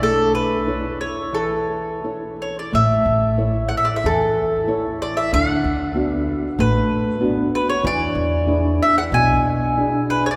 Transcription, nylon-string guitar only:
X:1
M:4/4
L:1/8
Q:1/4=93
K:A
V:1 name="Nylon-string guitar"
A,2 [EAc]2 E,2 [EAc]2 | A,2 [EAc]2 E,2 [EAc]2 | D,2 [B,DF]2 A,2 [B,DF]2 | E,2 [DEG]2 B,,2 [DEG]2 |]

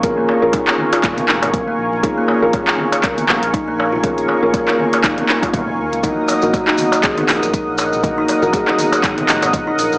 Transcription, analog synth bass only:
X:1
M:4/4
L:1/16
Q:"Swing 16ths" 1/4=120
K:Bbm
V:1 name="Analog synth bass" clef=bass
B,,,2 z B,,, z4 A,,, z F,,, A,,, z2 B,,, B,,, | z3 B,,, z4 D,, z B,,, B,,, z B,,,3- | B,,,2 z B,,, z4 A,,, z4 F,,, E,, D,, | z3 B,,, z4 D,, z B,,, B,,, z B,,,3- |
B,,,2 z B,,, z4 A,,, z F,,, A,,, z2 B,,, B,,, |]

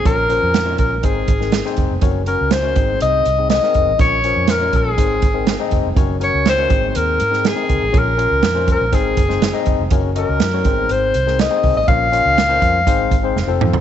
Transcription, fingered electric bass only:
X:1
M:4/4
L:1/16
Q:1/4=122
K:Abmix
V:1 name="Fingered electric bass" clef=bass
B,,,3 F,,3 B,,,2 A,,,2 A,,,3 z F,,, F,,, | G,,,3 D,,3 A,,,2 C,,2 C,,3 z F,,, =A,,, | B,,,3 F,,3 B,,,2 A,,,2 A,,,3 z F,,, F,,, | G,,,3 D,,3 A,,,2 E,,2 A,,3 z D,, =A,,, |
B,,,3 D,, F,,3 B,,, A,,,2 G,,,3 z G,,, F,,, | G,,,3 D,, G,,2 A,,,2 A,,,2 C,,3 z C,, =A,,, | B,,,3 D,,3 F,,2 A,,,2 A,,,2 F,,, F,,, F,,2 |]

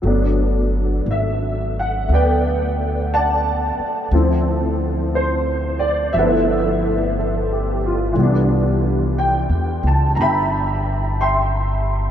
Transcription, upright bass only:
X:1
M:4/4
L:1/8
Q:"Swing" 1/4=60
K:G
V:1 name="Upright bass" clef=bass
G,,,2 _A,,,2 D,,3 z | D,,4 G,,,4 | C,,2- (3C,, E,, ^C,, G,,,4 |]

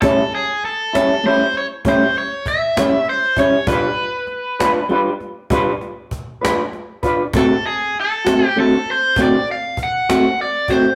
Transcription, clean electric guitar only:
X:1
M:12/8
L:1/8
Q:3/8=66
K:Ador
V:1 name="Clean electric guitar"
[A,,G,^CE] z2 [G,CE] [A,,G,CE] z [A,,G,CE] z2 [G,CE] z [G,CE] | [G,D=FB] z2 [DFB] [G,DFB] z [G,DFB] z2 [DFB] z [DFB] | [D,A,CF] z2 [A,CF] [D,A,CF] z [D,A,CF] z2 [A,CF] z [A,CF] |]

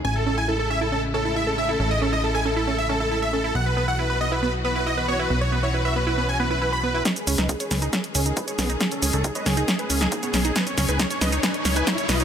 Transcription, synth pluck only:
X:1
M:4/4
L:1/16
Q:1/4=137
K:C#m
V:1 name="Synth pluck"
C z C E E A C E C z C E E A C E | C z C E E A C E C z C E E A C E | B, z B, E E B B, E B, z B, E E B B, E | B, z B, E E B B, E B, z B, E E B B, E |
C z C D D c C D C z C D D c C D | C z C D D c C D C z C D D c C D | C z C D D c C D C z C D D c C D |]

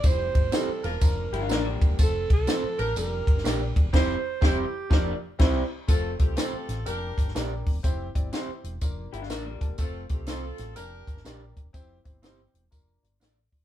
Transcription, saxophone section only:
X:1
M:4/4
L:1/16
Q:"Swing" 1/4=123
K:F
V:1 name="Saxophone section"
[EGc] z4 z [DFB]3 z6 z | [CFA] z4 z [DGB]3 z6 z | [EGc]2 z2 [EGc]2 z8 z2 | [CFA]2 [CEG]2 [CFA]4 [DGB]4 z4 |
z16 | [CFA]2 [CEG]2 [CFA]4 [DGB]4 z4 | z16 |]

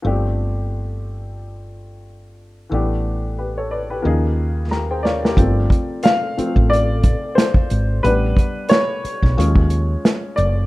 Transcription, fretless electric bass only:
X:1
M:4/4
L:1/16
Q:"Swing 16ths" 1/4=90
K:Aphr
V:1 name="Fretless electric bass" clef=bass
G,,,16 | A,,,8 _E,,8 | G,,,2 z4 z A,,,4 z3 _A,,,2 | A,,,2 z4 z =B,,, _E,,4 z2 ^F,,,2 |]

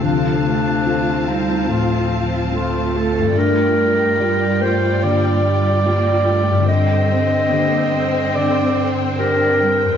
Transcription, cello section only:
X:1
M:4/4
L:1/8
Q:1/4=72
K:Gm
V:1 name="Cello section"
F, A, A, G, F,2 A,2- | A,2 G, A, B, G, B, A, | G, C B, C3 D G, |]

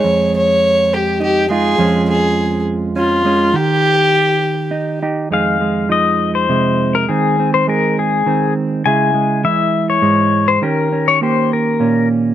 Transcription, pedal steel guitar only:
X:1
M:3/4
L:1/16
Q:1/4=102
K:Fm
V:1 name="Pedal steel guitar"
z12 | z12 | z12 | f4 e3 c4 B |
A3 c B2 A4 z2 | a4 _f3 d4 c | B3 d c2 B4 z2 |]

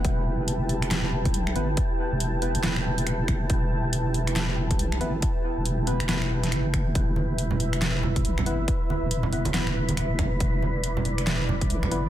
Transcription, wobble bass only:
X:1
M:4/4
L:1/16
Q:"Swing 16ths" 1/4=139
K:Em
V:1 name="Wobble bass" clef=bass
E,,,12 B,,,2 G,,,2 | z3 E,,,4 E,,,8- E,,, | E,,,12 B,,,2 G,,,2 | z3 E,,,4 E,,,4- E,,, F,,,4 |
E,,,12 B,,,2 G,,,2 | z3 E,,,4 E,,,8- E,,, | E,,,12 B,,,2 G,,,2 |]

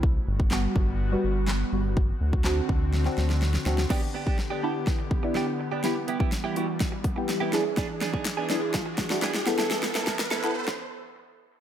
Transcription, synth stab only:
X:1
M:4/4
L:1/16
Q:1/4=124
K:G
V:1 name="Synth stab"
z4 [G,B,F]3 z2 [G,B,F]3 z2 [G,B,F]2 | z4 [CDF]3 z2 [CDF]3 z2 [CDF]2 | [B,DG]4 z2 [B,DE]3 z2 [B,DE]3 z2 | [B,EG]4 z2 [B,EF]3 z2 [B,EG]3 [DE^G]2- |
[DE^G]4 z2 [DEG]3 z2 [DEF]3 [B,EA]2- | [B,EA]4 z2 [B,EA]2 z8 |]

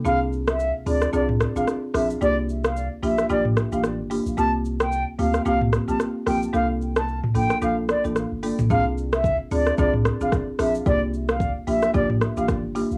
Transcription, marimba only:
X:1
M:4/4
L:1/16
Q:"Swing 16ths" 1/4=111
K:F
V:1 name="Marimba"
[CDF_A]4 z2 [CDFA] z [CDFA] z2 [CDFA] z2 [CDFA] z | [B,DFG]4 z2 [B,DFG] z [B,DFG] z2 [B,DFG] z2 [B,DFG] z | [B,CFG]4 z2 [B,CFG] z [B,CFG] z2 [B,CFG] z2 [B,CFG] z | [B,DFA]4 z2 [B,DFA] z [B,DFA] z2 [B,DFA] z2 [B,DFA] z |
[CDF_A]4 z2 [CDFA] z [CDFA] z2 [CDFA] z2 [CDFA] z | [B,DFG]4 z2 [B,DFG] z [B,DFG] z2 [B,DFG] z2 [B,DFG] z |]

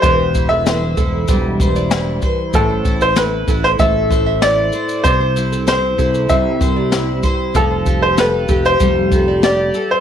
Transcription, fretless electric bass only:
X:1
M:4/4
L:1/8
Q:1/4=96
K:C
V:1 name="Fretless electric bass" clef=bass
E,,,3 E,,, E,,,3 z | A,,,3 A,,, A,,,3 z | C,,3 C,, C,,3 z | F,,,3 F,,, F,,,3 z |]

